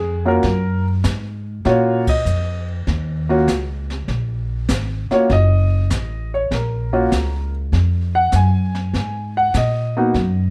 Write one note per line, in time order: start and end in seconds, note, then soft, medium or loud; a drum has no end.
0.00 0.42 F2 medium
0.00 0.26 G#4 medium
0.25 0.42 A#3 medium
0.25 0.43 C#4 medium
0.25 0.43 F4 soft
0.25 0.43 F#4 medium
0.25 0.83 A#4 medium
0.43 1.03 F#2 medium
0.43 brush sweep soft
0.43 kick soft
0.43 snare soft
1.04 1.63 G#2 medium
1.04 snare medium
1.04 hi-hat pedal medium
1.65 2.24 A#2 medium
1.65 2.03 A#3 medium
1.65 2.03 C#4 medium
1.65 2.04 F4 medium
1.65 2.04 F#4 medium
1.65 brush sweep soft
1.65 kick soft
1.65 snare soft
1.69 2.08 C#5 medium
2.07 2.65 D#5 medium
2.07 kick medium
2.07 ride medium
2.25 2.85 F2 medium
2.25 hi-hat pedal soft
2.87 3.46 D#2 medium
2.87 brush sweep soft
2.87 kick soft
2.87 snare soft
3.29 3.46 A#3 medium
3.29 3.46 C#4 medium
3.29 3.47 F4 medium
3.29 3.46 F#4 medium
3.47 4.06 C#2 medium
3.47 kick soft
3.47 snare medium
3.47 hi-hat pedal medium
3.90 snare soft
4.08 4.67 A#1 medium
4.08 brush sweep soft
4.08 kick soft
4.08 snare soft
4.69 5.08 G#1 medium
4.69 kick soft
4.69 snare medium
4.69 hi-hat pedal medium
5.11 5.28 A#3 medium
5.11 5.28 C#4 soft
5.11 5.28 F4 soft
5.11 5.28 F#4 medium
5.11 5.31 C#5 medium
5.11 muted upright bass stroke soft
5.11 snare soft
5.30 5.89 F#1 medium
5.30 6.30 D#5 medium
5.30 brush sweep soft
5.30 kick soft
5.30 snare soft
5.90 6.49 A1 medium
5.90 kick soft
5.90 snare medium
5.90 hi-hat pedal medium
6.34 6.52 C#5 medium
6.51 7.10 A#1 medium
6.51 7.51 A#4 soft
6.51 brush sweep soft
6.51 kick soft
6.51 snare soft
6.93 7.10 A#3 medium
6.93 7.10 C#4 medium
6.93 7.10 F4 medium
6.93 7.10 F#4 medium
7.12 7.71 C#2 medium
7.12 kick soft
7.12 snare soft
7.12 hi-hat pedal soft
7.72 8.31 F2 medium
7.72 brush sweep soft
7.72 kick soft
7.72 snare soft
8.15 8.33 F#5 medium
8.32 8.92 F#2 medium
8.32 9.33 G#5 medium
8.32 kick soft
8.32 snare medium
8.32 hi-hat pedal soft
8.75 snare soft
8.93 9.53 G#2 medium
8.93 brush sweep soft
8.93 kick soft
8.93 snare soft
9.37 9.55 F#5 medium
9.54 10.13 A#2 medium
9.54 10.50 D#5 medium
9.54 kick soft
9.54 snare medium
9.54 hi-hat pedal medium
9.97 10.13 A#3 medium
9.97 10.14 B3 soft
9.97 10.14 D#4 medium
9.97 10.14 F#4 medium
10.14 10.50 F#2 medium
10.14 brush sweep soft
10.14 kick soft
10.14 snare soft